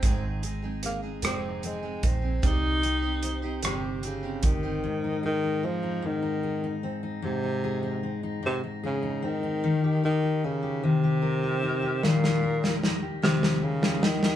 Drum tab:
HH |x-x-x-x-x-x-|x-x-x-x-x-x-|------------|------------|
SD |------r-----|------r-----|------------|------------|
BD |o---------o-|o---------o-|------------|------------|

HH |------------|------------|
SD |------------|oo-oo-oo-ooo|
BD |------------|------------|